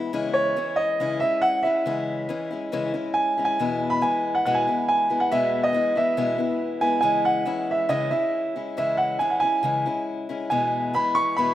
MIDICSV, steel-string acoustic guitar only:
0, 0, Header, 1, 2, 480
1, 0, Start_track
1, 0, Key_signature, 4, "major"
1, 0, Tempo, 432588
1, 146, Time_signature, 4, 2, 24, 8
1, 12805, End_track
2, 0, Start_track
2, 0, Title_t, "Steel-string acoustic guitar"
2, 0, Program_c, 0, 25
2, 0, Note_on_c, 0, 52, 47
2, 0, Note_on_c, 0, 56, 54
2, 0, Note_on_c, 0, 59, 57
2, 0, Note_on_c, 0, 64, 55
2, 131, Note_off_c, 0, 52, 0
2, 137, Note_off_c, 0, 56, 0
2, 140, Note_off_c, 0, 64, 0
2, 141, Note_off_c, 0, 59, 0
2, 143, Note_on_c, 0, 49, 66
2, 145, Note_on_c, 0, 52, 82
2, 150, Note_on_c, 0, 56, 78
2, 151, Note_on_c, 0, 61, 80
2, 156, Note_on_c, 0, 64, 86
2, 622, Note_off_c, 0, 52, 0
2, 624, Note_off_c, 0, 49, 0
2, 626, Note_on_c, 0, 52, 62
2, 627, Note_off_c, 0, 56, 0
2, 628, Note_off_c, 0, 61, 0
2, 631, Note_on_c, 0, 56, 63
2, 641, Note_off_c, 0, 64, 0
2, 641, Note_on_c, 0, 61, 62
2, 646, Note_on_c, 0, 64, 72
2, 1103, Note_off_c, 0, 61, 0
2, 1104, Note_off_c, 0, 52, 0
2, 1107, Note_off_c, 0, 56, 0
2, 1109, Note_on_c, 0, 52, 62
2, 1110, Note_on_c, 0, 49, 65
2, 1111, Note_on_c, 0, 56, 63
2, 1117, Note_on_c, 0, 61, 72
2, 1119, Note_off_c, 0, 64, 0
2, 1124, Note_on_c, 0, 64, 81
2, 1333, Note_off_c, 0, 64, 0
2, 1340, Note_off_c, 0, 61, 0
2, 1346, Note_off_c, 0, 49, 0
2, 1346, Note_off_c, 0, 52, 0
2, 1347, Note_off_c, 0, 56, 0
2, 1347, Note_on_c, 0, 64, 47
2, 1354, Note_on_c, 0, 61, 49
2, 1369, Note_on_c, 0, 56, 39
2, 1825, Note_off_c, 0, 64, 0
2, 1828, Note_off_c, 0, 61, 0
2, 1829, Note_on_c, 0, 64, 54
2, 1840, Note_off_c, 0, 56, 0
2, 1840, Note_on_c, 0, 61, 43
2, 1845, Note_on_c, 0, 56, 41
2, 2058, Note_off_c, 0, 56, 0
2, 2059, Note_off_c, 0, 61, 0
2, 2060, Note_on_c, 0, 49, 73
2, 2062, Note_off_c, 0, 64, 0
2, 2063, Note_on_c, 0, 52, 61
2, 2071, Note_on_c, 0, 56, 73
2, 2072, Note_on_c, 0, 61, 71
2, 2076, Note_on_c, 0, 64, 70
2, 2525, Note_off_c, 0, 52, 0
2, 2528, Note_off_c, 0, 56, 0
2, 2538, Note_off_c, 0, 61, 0
2, 2538, Note_on_c, 0, 52, 70
2, 2541, Note_off_c, 0, 49, 0
2, 2542, Note_off_c, 0, 64, 0
2, 2542, Note_on_c, 0, 56, 72
2, 2552, Note_on_c, 0, 61, 72
2, 2556, Note_on_c, 0, 64, 72
2, 2769, Note_off_c, 0, 64, 0
2, 2779, Note_off_c, 0, 52, 0
2, 2781, Note_off_c, 0, 56, 0
2, 2782, Note_on_c, 0, 64, 54
2, 2783, Note_off_c, 0, 61, 0
2, 2796, Note_on_c, 0, 61, 43
2, 2809, Note_on_c, 0, 56, 41
2, 3016, Note_off_c, 0, 61, 0
2, 3018, Note_on_c, 0, 49, 73
2, 3020, Note_off_c, 0, 56, 0
2, 3021, Note_off_c, 0, 64, 0
2, 3024, Note_on_c, 0, 52, 79
2, 3029, Note_on_c, 0, 61, 82
2, 3033, Note_on_c, 0, 56, 79
2, 3034, Note_on_c, 0, 64, 90
2, 3244, Note_off_c, 0, 64, 0
2, 3250, Note_off_c, 0, 61, 0
2, 3257, Note_on_c, 0, 64, 50
2, 3259, Note_off_c, 0, 49, 0
2, 3260, Note_off_c, 0, 56, 0
2, 3262, Note_off_c, 0, 52, 0
2, 3263, Note_on_c, 0, 61, 50
2, 3273, Note_on_c, 0, 56, 42
2, 3733, Note_off_c, 0, 64, 0
2, 3741, Note_off_c, 0, 61, 0
2, 3746, Note_off_c, 0, 56, 0
2, 3746, Note_on_c, 0, 64, 49
2, 3758, Note_on_c, 0, 61, 45
2, 3763, Note_on_c, 0, 56, 50
2, 3979, Note_off_c, 0, 56, 0
2, 3983, Note_off_c, 0, 64, 0
2, 3987, Note_on_c, 0, 40, 67
2, 3989, Note_off_c, 0, 61, 0
2, 3991, Note_on_c, 0, 47, 63
2, 3992, Note_on_c, 0, 56, 71
2, 4000, Note_on_c, 0, 59, 77
2, 4001, Note_on_c, 0, 52, 61
2, 4005, Note_on_c, 0, 64, 81
2, 4450, Note_off_c, 0, 52, 0
2, 4454, Note_on_c, 0, 52, 57
2, 4459, Note_off_c, 0, 59, 0
2, 4463, Note_off_c, 0, 40, 0
2, 4465, Note_off_c, 0, 47, 0
2, 4465, Note_off_c, 0, 56, 0
2, 4469, Note_on_c, 0, 56, 60
2, 4472, Note_on_c, 0, 59, 61
2, 4473, Note_off_c, 0, 64, 0
2, 4478, Note_on_c, 0, 64, 66
2, 4945, Note_off_c, 0, 59, 0
2, 4946, Note_on_c, 0, 40, 59
2, 4949, Note_off_c, 0, 56, 0
2, 4951, Note_off_c, 0, 52, 0
2, 4951, Note_on_c, 0, 47, 67
2, 4953, Note_on_c, 0, 56, 75
2, 4955, Note_on_c, 0, 52, 67
2, 4957, Note_off_c, 0, 64, 0
2, 4957, Note_on_c, 0, 59, 74
2, 4961, Note_on_c, 0, 64, 66
2, 5171, Note_off_c, 0, 64, 0
2, 5182, Note_off_c, 0, 40, 0
2, 5184, Note_off_c, 0, 59, 0
2, 5185, Note_off_c, 0, 47, 0
2, 5185, Note_on_c, 0, 64, 48
2, 5186, Note_off_c, 0, 56, 0
2, 5187, Note_off_c, 0, 52, 0
2, 5197, Note_on_c, 0, 59, 44
2, 5200, Note_on_c, 0, 56, 42
2, 5210, Note_on_c, 0, 52, 37
2, 5648, Note_off_c, 0, 59, 0
2, 5651, Note_off_c, 0, 64, 0
2, 5656, Note_on_c, 0, 64, 51
2, 5661, Note_on_c, 0, 59, 45
2, 5663, Note_off_c, 0, 56, 0
2, 5664, Note_off_c, 0, 52, 0
2, 5667, Note_on_c, 0, 56, 47
2, 5669, Note_on_c, 0, 52, 44
2, 5886, Note_off_c, 0, 52, 0
2, 5891, Note_off_c, 0, 56, 0
2, 5892, Note_off_c, 0, 59, 0
2, 5894, Note_off_c, 0, 64, 0
2, 5896, Note_on_c, 0, 40, 67
2, 5899, Note_on_c, 0, 47, 71
2, 5900, Note_on_c, 0, 52, 73
2, 5905, Note_on_c, 0, 56, 67
2, 5906, Note_on_c, 0, 59, 82
2, 5908, Note_on_c, 0, 64, 75
2, 6354, Note_off_c, 0, 52, 0
2, 6358, Note_on_c, 0, 52, 55
2, 6363, Note_off_c, 0, 59, 0
2, 6368, Note_off_c, 0, 56, 0
2, 6372, Note_on_c, 0, 56, 67
2, 6377, Note_off_c, 0, 40, 0
2, 6377, Note_on_c, 0, 59, 63
2, 6378, Note_off_c, 0, 47, 0
2, 6381, Note_off_c, 0, 64, 0
2, 6386, Note_on_c, 0, 64, 62
2, 6594, Note_off_c, 0, 64, 0
2, 6608, Note_off_c, 0, 52, 0
2, 6608, Note_on_c, 0, 64, 49
2, 6609, Note_off_c, 0, 59, 0
2, 6610, Note_off_c, 0, 56, 0
2, 6622, Note_on_c, 0, 59, 44
2, 6623, Note_on_c, 0, 56, 46
2, 6629, Note_on_c, 0, 52, 39
2, 6836, Note_off_c, 0, 52, 0
2, 6838, Note_off_c, 0, 59, 0
2, 6845, Note_off_c, 0, 56, 0
2, 6846, Note_off_c, 0, 64, 0
2, 6846, Note_on_c, 0, 40, 62
2, 6847, Note_on_c, 0, 47, 68
2, 6850, Note_on_c, 0, 52, 68
2, 6852, Note_on_c, 0, 59, 80
2, 6858, Note_on_c, 0, 56, 79
2, 6859, Note_on_c, 0, 64, 75
2, 7068, Note_off_c, 0, 64, 0
2, 7074, Note_off_c, 0, 59, 0
2, 7081, Note_on_c, 0, 64, 48
2, 7084, Note_off_c, 0, 56, 0
2, 7087, Note_on_c, 0, 59, 46
2, 7091, Note_off_c, 0, 40, 0
2, 7092, Note_off_c, 0, 47, 0
2, 7093, Note_off_c, 0, 52, 0
2, 7097, Note_on_c, 0, 56, 45
2, 7105, Note_on_c, 0, 52, 44
2, 7553, Note_off_c, 0, 64, 0
2, 7554, Note_off_c, 0, 59, 0
2, 7557, Note_on_c, 0, 64, 57
2, 7564, Note_off_c, 0, 56, 0
2, 7567, Note_off_c, 0, 52, 0
2, 7567, Note_on_c, 0, 59, 48
2, 7569, Note_on_c, 0, 56, 43
2, 7571, Note_on_c, 0, 52, 47
2, 7781, Note_off_c, 0, 56, 0
2, 7784, Note_off_c, 0, 52, 0
2, 7794, Note_on_c, 0, 49, 64
2, 7795, Note_on_c, 0, 56, 82
2, 7797, Note_off_c, 0, 64, 0
2, 7797, Note_on_c, 0, 52, 65
2, 7798, Note_off_c, 0, 59, 0
2, 7802, Note_on_c, 0, 61, 71
2, 7810, Note_on_c, 0, 64, 77
2, 8267, Note_off_c, 0, 52, 0
2, 8271, Note_off_c, 0, 61, 0
2, 8272, Note_on_c, 0, 52, 62
2, 8273, Note_off_c, 0, 56, 0
2, 8277, Note_on_c, 0, 56, 62
2, 8285, Note_on_c, 0, 61, 66
2, 8286, Note_off_c, 0, 49, 0
2, 8286, Note_off_c, 0, 64, 0
2, 8290, Note_on_c, 0, 64, 69
2, 8749, Note_off_c, 0, 56, 0
2, 8750, Note_off_c, 0, 61, 0
2, 8753, Note_off_c, 0, 52, 0
2, 8753, Note_on_c, 0, 49, 69
2, 8754, Note_on_c, 0, 56, 69
2, 8758, Note_on_c, 0, 52, 74
2, 8763, Note_on_c, 0, 61, 71
2, 8765, Note_off_c, 0, 64, 0
2, 8770, Note_on_c, 0, 64, 82
2, 8984, Note_off_c, 0, 64, 0
2, 8996, Note_off_c, 0, 61, 0
2, 8997, Note_on_c, 0, 64, 48
2, 9005, Note_off_c, 0, 49, 0
2, 9006, Note_off_c, 0, 56, 0
2, 9008, Note_off_c, 0, 52, 0
2, 9010, Note_on_c, 0, 61, 43
2, 9020, Note_on_c, 0, 56, 41
2, 9486, Note_off_c, 0, 61, 0
2, 9491, Note_off_c, 0, 64, 0
2, 9495, Note_on_c, 0, 64, 52
2, 9499, Note_on_c, 0, 61, 46
2, 9502, Note_off_c, 0, 56, 0
2, 9506, Note_on_c, 0, 56, 41
2, 9726, Note_off_c, 0, 56, 0
2, 9728, Note_off_c, 0, 64, 0
2, 9730, Note_on_c, 0, 49, 71
2, 9731, Note_off_c, 0, 61, 0
2, 9737, Note_on_c, 0, 52, 68
2, 9739, Note_on_c, 0, 56, 78
2, 9741, Note_on_c, 0, 64, 80
2, 9744, Note_on_c, 0, 61, 66
2, 10205, Note_off_c, 0, 52, 0
2, 10207, Note_off_c, 0, 61, 0
2, 10210, Note_off_c, 0, 56, 0
2, 10210, Note_on_c, 0, 52, 56
2, 10214, Note_off_c, 0, 49, 0
2, 10215, Note_on_c, 0, 56, 61
2, 10220, Note_on_c, 0, 61, 62
2, 10221, Note_off_c, 0, 64, 0
2, 10225, Note_on_c, 0, 64, 63
2, 10439, Note_off_c, 0, 64, 0
2, 10452, Note_on_c, 0, 64, 44
2, 10454, Note_off_c, 0, 52, 0
2, 10457, Note_off_c, 0, 56, 0
2, 10457, Note_off_c, 0, 61, 0
2, 10470, Note_on_c, 0, 56, 37
2, 10470, Note_on_c, 0, 61, 42
2, 10682, Note_off_c, 0, 56, 0
2, 10683, Note_on_c, 0, 49, 76
2, 10689, Note_off_c, 0, 61, 0
2, 10691, Note_off_c, 0, 64, 0
2, 10694, Note_on_c, 0, 52, 69
2, 10695, Note_on_c, 0, 56, 65
2, 10702, Note_on_c, 0, 61, 72
2, 10704, Note_on_c, 0, 64, 68
2, 10923, Note_off_c, 0, 64, 0
2, 10931, Note_off_c, 0, 49, 0
2, 10936, Note_off_c, 0, 61, 0
2, 10937, Note_off_c, 0, 52, 0
2, 10937, Note_off_c, 0, 56, 0
2, 10937, Note_on_c, 0, 64, 55
2, 10949, Note_on_c, 0, 61, 44
2, 10957, Note_on_c, 0, 56, 42
2, 11414, Note_off_c, 0, 64, 0
2, 11417, Note_off_c, 0, 61, 0
2, 11419, Note_on_c, 0, 64, 60
2, 11430, Note_on_c, 0, 61, 51
2, 11435, Note_off_c, 0, 56, 0
2, 11439, Note_on_c, 0, 56, 47
2, 11656, Note_off_c, 0, 56, 0
2, 11659, Note_on_c, 0, 40, 69
2, 11660, Note_off_c, 0, 64, 0
2, 11661, Note_on_c, 0, 52, 69
2, 11663, Note_off_c, 0, 61, 0
2, 11664, Note_on_c, 0, 47, 64
2, 11667, Note_on_c, 0, 59, 82
2, 11669, Note_on_c, 0, 56, 74
2, 11673, Note_on_c, 0, 64, 68
2, 12130, Note_off_c, 0, 52, 0
2, 12135, Note_on_c, 0, 52, 65
2, 12137, Note_off_c, 0, 59, 0
2, 12138, Note_off_c, 0, 56, 0
2, 12140, Note_off_c, 0, 40, 0
2, 12143, Note_off_c, 0, 47, 0
2, 12143, Note_on_c, 0, 56, 61
2, 12151, Note_on_c, 0, 59, 67
2, 12157, Note_off_c, 0, 64, 0
2, 12161, Note_on_c, 0, 64, 67
2, 12622, Note_off_c, 0, 59, 0
2, 12626, Note_off_c, 0, 52, 0
2, 12626, Note_on_c, 0, 40, 64
2, 12627, Note_on_c, 0, 47, 64
2, 12630, Note_on_c, 0, 52, 67
2, 12631, Note_off_c, 0, 56, 0
2, 12631, Note_off_c, 0, 64, 0
2, 12635, Note_on_c, 0, 56, 63
2, 12635, Note_on_c, 0, 59, 72
2, 12636, Note_on_c, 0, 64, 74
2, 12805, Note_off_c, 0, 40, 0
2, 12805, Note_off_c, 0, 47, 0
2, 12805, Note_off_c, 0, 52, 0
2, 12805, Note_off_c, 0, 56, 0
2, 12805, Note_off_c, 0, 59, 0
2, 12805, Note_off_c, 0, 64, 0
2, 12805, End_track
0, 0, End_of_file